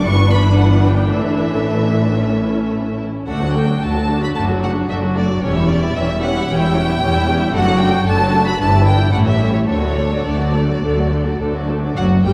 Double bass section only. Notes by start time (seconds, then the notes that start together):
0.04 G1
1.10 A1
3.27 D2
3.82 D2
4.36 F#1
4.89 F#1
5.43 E1
5.96 E1
6.49 E1
7.02 E1
7.54 F#1
8.06 F#1
8.59 G1
9.13 A1
9.68 D2
10.26 D2
10.83 D2
11.41 D2
11.97 F#1
12.25 G1